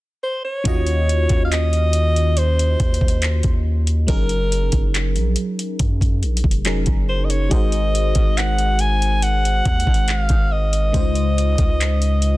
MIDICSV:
0, 0, Header, 1, 5, 480
1, 0, Start_track
1, 0, Tempo, 857143
1, 367, Time_signature, 4, 2, 24, 8
1, 6928, End_track
2, 0, Start_track
2, 0, Title_t, "Alto saxophone"
2, 0, Program_c, 0, 65
2, 131, Note_on_c, 0, 72, 79
2, 240, Note_off_c, 0, 72, 0
2, 250, Note_on_c, 0, 73, 92
2, 787, Note_off_c, 0, 73, 0
2, 809, Note_on_c, 0, 77, 73
2, 849, Note_on_c, 0, 75, 109
2, 857, Note_off_c, 0, 77, 0
2, 1331, Note_on_c, 0, 72, 87
2, 1339, Note_off_c, 0, 75, 0
2, 2049, Note_off_c, 0, 72, 0
2, 2288, Note_on_c, 0, 70, 110
2, 2745, Note_off_c, 0, 70, 0
2, 3969, Note_on_c, 0, 72, 84
2, 4058, Note_on_c, 0, 75, 62
2, 4066, Note_off_c, 0, 72, 0
2, 4089, Note_on_c, 0, 73, 84
2, 4097, Note_off_c, 0, 75, 0
2, 4208, Note_on_c, 0, 75, 97
2, 4216, Note_off_c, 0, 73, 0
2, 4689, Note_on_c, 0, 78, 103
2, 4698, Note_off_c, 0, 75, 0
2, 4930, Note_on_c, 0, 80, 99
2, 4938, Note_off_c, 0, 78, 0
2, 5169, Note_on_c, 0, 78, 106
2, 5178, Note_off_c, 0, 80, 0
2, 5649, Note_on_c, 0, 77, 92
2, 5657, Note_off_c, 0, 78, 0
2, 5890, Note_on_c, 0, 75, 96
2, 5899, Note_off_c, 0, 77, 0
2, 6928, Note_off_c, 0, 75, 0
2, 6928, End_track
3, 0, Start_track
3, 0, Title_t, "FM electric piano"
3, 0, Program_c, 1, 5
3, 357, Note_on_c, 1, 51, 75
3, 363, Note_on_c, 1, 61, 65
3, 368, Note_on_c, 1, 65, 67
3, 374, Note_on_c, 1, 66, 68
3, 379, Note_on_c, 1, 75, 83
3, 474, Control_c, 1, 64, 127
3, 2260, Note_off_c, 1, 51, 0
3, 2262, Note_off_c, 1, 61, 0
3, 2265, Note_off_c, 1, 65, 0
3, 2268, Note_off_c, 1, 66, 0
3, 2271, Note_off_c, 1, 75, 0
3, 2277, Note_on_c, 1, 54, 63
3, 2283, Note_on_c, 1, 61, 54
3, 2288, Note_on_c, 1, 63, 55
3, 2293, Control_c, 1, 64, 0
3, 2294, Note_on_c, 1, 68, 59
3, 2299, Note_on_c, 1, 70, 72
3, 2408, Control_c, 1, 64, 127
3, 3700, Note_off_c, 1, 54, 0
3, 3702, Note_off_c, 1, 61, 0
3, 3705, Note_off_c, 1, 63, 0
3, 3708, Note_off_c, 1, 68, 0
3, 3710, Note_off_c, 1, 70, 0
3, 3723, Note_on_c, 1, 54, 57
3, 3725, Note_on_c, 1, 61, 53
3, 3728, Note_on_c, 1, 63, 52
3, 3731, Note_on_c, 1, 68, 55
3, 3734, Note_on_c, 1, 70, 63
3, 4195, Note_off_c, 1, 63, 0
3, 4196, Note_on_c, 1, 56, 67
3, 4198, Note_off_c, 1, 68, 0
3, 4201, Note_on_c, 1, 63, 58
3, 4205, Note_off_c, 1, 54, 0
3, 4205, Note_on_c, 1, 68, 59
3, 4206, Note_off_c, 1, 61, 0
3, 4207, Note_off_c, 1, 70, 0
3, 4209, Note_on_c, 1, 66, 58
3, 4213, Control_c, 1, 64, 0
3, 4214, Note_on_c, 1, 70, 55
3, 4218, Note_on_c, 1, 72, 70
3, 4327, Control_c, 1, 64, 127
3, 6099, Note_off_c, 1, 56, 0
3, 6102, Note_off_c, 1, 63, 0
3, 6103, Note_off_c, 1, 68, 0
3, 6106, Note_off_c, 1, 66, 0
3, 6108, Note_off_c, 1, 70, 0
3, 6110, Note_off_c, 1, 72, 0
3, 6116, Note_on_c, 1, 49, 65
3, 6122, Note_on_c, 1, 56, 58
3, 6127, Note_on_c, 1, 63, 55
3, 6133, Note_on_c, 1, 65, 55
3, 6135, Control_c, 1, 64, 0
3, 6138, Note_on_c, 1, 72, 72
3, 6225, Control_c, 1, 64, 127
3, 6928, Note_off_c, 1, 49, 0
3, 6928, Note_off_c, 1, 56, 0
3, 6928, Note_off_c, 1, 63, 0
3, 6928, Note_off_c, 1, 65, 0
3, 6928, Note_off_c, 1, 72, 0
3, 6928, End_track
4, 0, Start_track
4, 0, Title_t, "808-style bass"
4, 0, Program_c, 2, 38
4, 367, Note_on_c, 2, 39, 109
4, 712, Note_off_c, 2, 39, 0
4, 728, Note_on_c, 2, 39, 93
4, 1545, Note_off_c, 2, 39, 0
4, 1567, Note_on_c, 2, 39, 103
4, 1913, Note_off_c, 2, 39, 0
4, 1927, Note_on_c, 2, 39, 98
4, 2272, Note_off_c, 2, 39, 0
4, 2288, Note_on_c, 2, 30, 107
4, 2633, Note_off_c, 2, 30, 0
4, 2647, Note_on_c, 2, 30, 97
4, 2888, Note_on_c, 2, 34, 96
4, 2896, Note_off_c, 2, 30, 0
4, 3001, Note_off_c, 2, 34, 0
4, 3247, Note_on_c, 2, 42, 102
4, 3488, Note_on_c, 2, 34, 92
4, 3497, Note_off_c, 2, 42, 0
4, 3601, Note_off_c, 2, 34, 0
4, 3607, Note_on_c, 2, 29, 97
4, 3837, Note_off_c, 2, 29, 0
4, 3847, Note_on_c, 2, 30, 99
4, 4192, Note_off_c, 2, 30, 0
4, 4207, Note_on_c, 2, 32, 110
4, 4552, Note_off_c, 2, 32, 0
4, 4567, Note_on_c, 2, 32, 93
4, 5385, Note_off_c, 2, 32, 0
4, 5407, Note_on_c, 2, 39, 98
4, 5522, Note_off_c, 2, 39, 0
4, 5528, Note_on_c, 2, 32, 98
4, 5758, Note_off_c, 2, 32, 0
4, 5767, Note_on_c, 2, 32, 98
4, 6113, Note_off_c, 2, 32, 0
4, 6128, Note_on_c, 2, 37, 116
4, 6473, Note_off_c, 2, 37, 0
4, 6488, Note_on_c, 2, 37, 94
4, 6928, Note_off_c, 2, 37, 0
4, 6928, End_track
5, 0, Start_track
5, 0, Title_t, "Drums"
5, 365, Note_on_c, 9, 42, 65
5, 367, Note_on_c, 9, 36, 102
5, 421, Note_off_c, 9, 42, 0
5, 423, Note_off_c, 9, 36, 0
5, 485, Note_on_c, 9, 42, 47
5, 541, Note_off_c, 9, 42, 0
5, 612, Note_on_c, 9, 42, 64
5, 668, Note_off_c, 9, 42, 0
5, 724, Note_on_c, 9, 42, 47
5, 727, Note_on_c, 9, 36, 86
5, 780, Note_off_c, 9, 42, 0
5, 783, Note_off_c, 9, 36, 0
5, 851, Note_on_c, 9, 42, 74
5, 854, Note_on_c, 9, 39, 119
5, 907, Note_off_c, 9, 42, 0
5, 910, Note_off_c, 9, 39, 0
5, 968, Note_on_c, 9, 42, 41
5, 1024, Note_off_c, 9, 42, 0
5, 1081, Note_on_c, 9, 42, 61
5, 1137, Note_off_c, 9, 42, 0
5, 1212, Note_on_c, 9, 42, 44
5, 1268, Note_off_c, 9, 42, 0
5, 1326, Note_on_c, 9, 42, 63
5, 1382, Note_off_c, 9, 42, 0
5, 1453, Note_on_c, 9, 42, 54
5, 1509, Note_off_c, 9, 42, 0
5, 1567, Note_on_c, 9, 36, 85
5, 1567, Note_on_c, 9, 42, 44
5, 1623, Note_off_c, 9, 36, 0
5, 1623, Note_off_c, 9, 42, 0
5, 1646, Note_on_c, 9, 42, 57
5, 1687, Note_on_c, 9, 36, 86
5, 1702, Note_off_c, 9, 42, 0
5, 1726, Note_on_c, 9, 42, 75
5, 1743, Note_off_c, 9, 36, 0
5, 1782, Note_off_c, 9, 42, 0
5, 1802, Note_on_c, 9, 42, 69
5, 1810, Note_on_c, 9, 39, 107
5, 1858, Note_off_c, 9, 42, 0
5, 1866, Note_off_c, 9, 39, 0
5, 1922, Note_on_c, 9, 42, 45
5, 1927, Note_on_c, 9, 36, 78
5, 1978, Note_off_c, 9, 42, 0
5, 1983, Note_off_c, 9, 36, 0
5, 2168, Note_on_c, 9, 42, 64
5, 2224, Note_off_c, 9, 42, 0
5, 2286, Note_on_c, 9, 42, 66
5, 2287, Note_on_c, 9, 36, 101
5, 2342, Note_off_c, 9, 42, 0
5, 2343, Note_off_c, 9, 36, 0
5, 2404, Note_on_c, 9, 42, 47
5, 2460, Note_off_c, 9, 42, 0
5, 2532, Note_on_c, 9, 42, 66
5, 2588, Note_off_c, 9, 42, 0
5, 2643, Note_on_c, 9, 42, 49
5, 2647, Note_on_c, 9, 36, 83
5, 2699, Note_off_c, 9, 42, 0
5, 2703, Note_off_c, 9, 36, 0
5, 2770, Note_on_c, 9, 42, 79
5, 2773, Note_on_c, 9, 39, 115
5, 2826, Note_off_c, 9, 42, 0
5, 2829, Note_off_c, 9, 39, 0
5, 2888, Note_on_c, 9, 42, 41
5, 2944, Note_off_c, 9, 42, 0
5, 3000, Note_on_c, 9, 42, 60
5, 3056, Note_off_c, 9, 42, 0
5, 3131, Note_on_c, 9, 42, 46
5, 3187, Note_off_c, 9, 42, 0
5, 3245, Note_on_c, 9, 42, 67
5, 3246, Note_on_c, 9, 36, 91
5, 3301, Note_off_c, 9, 42, 0
5, 3302, Note_off_c, 9, 36, 0
5, 3366, Note_on_c, 9, 36, 90
5, 3371, Note_on_c, 9, 42, 57
5, 3422, Note_off_c, 9, 36, 0
5, 3427, Note_off_c, 9, 42, 0
5, 3487, Note_on_c, 9, 42, 42
5, 3543, Note_off_c, 9, 42, 0
5, 3566, Note_on_c, 9, 42, 57
5, 3607, Note_on_c, 9, 36, 84
5, 3622, Note_off_c, 9, 42, 0
5, 3647, Note_on_c, 9, 42, 69
5, 3663, Note_off_c, 9, 36, 0
5, 3703, Note_off_c, 9, 42, 0
5, 3723, Note_on_c, 9, 42, 68
5, 3731, Note_on_c, 9, 39, 116
5, 3779, Note_off_c, 9, 42, 0
5, 3787, Note_off_c, 9, 39, 0
5, 3841, Note_on_c, 9, 42, 43
5, 3846, Note_on_c, 9, 36, 83
5, 3897, Note_off_c, 9, 42, 0
5, 3902, Note_off_c, 9, 36, 0
5, 4087, Note_on_c, 9, 42, 62
5, 4143, Note_off_c, 9, 42, 0
5, 4206, Note_on_c, 9, 36, 104
5, 4206, Note_on_c, 9, 42, 64
5, 4262, Note_off_c, 9, 36, 0
5, 4262, Note_off_c, 9, 42, 0
5, 4325, Note_on_c, 9, 42, 50
5, 4381, Note_off_c, 9, 42, 0
5, 4452, Note_on_c, 9, 42, 65
5, 4508, Note_off_c, 9, 42, 0
5, 4564, Note_on_c, 9, 42, 49
5, 4566, Note_on_c, 9, 36, 86
5, 4620, Note_off_c, 9, 42, 0
5, 4622, Note_off_c, 9, 36, 0
5, 4691, Note_on_c, 9, 42, 75
5, 4694, Note_on_c, 9, 39, 121
5, 4747, Note_off_c, 9, 42, 0
5, 4750, Note_off_c, 9, 39, 0
5, 4808, Note_on_c, 9, 42, 43
5, 4864, Note_off_c, 9, 42, 0
5, 4921, Note_on_c, 9, 42, 61
5, 4977, Note_off_c, 9, 42, 0
5, 5051, Note_on_c, 9, 42, 47
5, 5107, Note_off_c, 9, 42, 0
5, 5166, Note_on_c, 9, 42, 63
5, 5222, Note_off_c, 9, 42, 0
5, 5293, Note_on_c, 9, 42, 53
5, 5349, Note_off_c, 9, 42, 0
5, 5406, Note_on_c, 9, 42, 41
5, 5407, Note_on_c, 9, 36, 87
5, 5462, Note_off_c, 9, 42, 0
5, 5463, Note_off_c, 9, 36, 0
5, 5487, Note_on_c, 9, 42, 57
5, 5527, Note_on_c, 9, 36, 91
5, 5543, Note_off_c, 9, 42, 0
5, 5568, Note_on_c, 9, 42, 74
5, 5583, Note_off_c, 9, 36, 0
5, 5624, Note_off_c, 9, 42, 0
5, 5643, Note_on_c, 9, 42, 66
5, 5652, Note_on_c, 9, 39, 110
5, 5699, Note_off_c, 9, 42, 0
5, 5708, Note_off_c, 9, 39, 0
5, 5762, Note_on_c, 9, 42, 42
5, 5767, Note_on_c, 9, 36, 82
5, 5818, Note_off_c, 9, 42, 0
5, 5823, Note_off_c, 9, 36, 0
5, 6008, Note_on_c, 9, 42, 57
5, 6064, Note_off_c, 9, 42, 0
5, 6127, Note_on_c, 9, 36, 108
5, 6127, Note_on_c, 9, 42, 69
5, 6183, Note_off_c, 9, 36, 0
5, 6183, Note_off_c, 9, 42, 0
5, 6246, Note_on_c, 9, 42, 49
5, 6302, Note_off_c, 9, 42, 0
5, 6374, Note_on_c, 9, 42, 63
5, 6430, Note_off_c, 9, 42, 0
5, 6486, Note_on_c, 9, 42, 49
5, 6487, Note_on_c, 9, 36, 86
5, 6542, Note_off_c, 9, 42, 0
5, 6543, Note_off_c, 9, 36, 0
5, 6613, Note_on_c, 9, 42, 78
5, 6616, Note_on_c, 9, 39, 117
5, 6669, Note_off_c, 9, 42, 0
5, 6672, Note_off_c, 9, 39, 0
5, 6730, Note_on_c, 9, 42, 44
5, 6786, Note_off_c, 9, 42, 0
5, 6843, Note_on_c, 9, 42, 60
5, 6899, Note_off_c, 9, 42, 0
5, 6928, End_track
0, 0, End_of_file